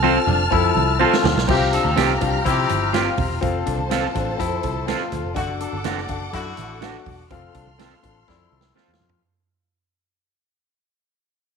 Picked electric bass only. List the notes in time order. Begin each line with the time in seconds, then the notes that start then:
Already playing: C2
0.27 F1
0.52 F2
0.75 C2
1.24 D2
1.36 B1
1.48 C2
1.85 D2
1.97 C2
2.21 C2
2.46 C3
2.70 G1
3.18 E1
3.43 F1
3.67 C2
4.15 A1
4.40 F2
4.64 C2
5.12 D2
5.24 F1
5.36 F#1
5.73 G1
5.85 F#1
6.09 F#1
6.33 F#2
6.58 A1
7.06 E1
7.30 F1
7.55 C2
8.04 A1
8.28 F2
8.52 C2
8.76 muted picked electric bass stroke
8.88 E2
9.00 F2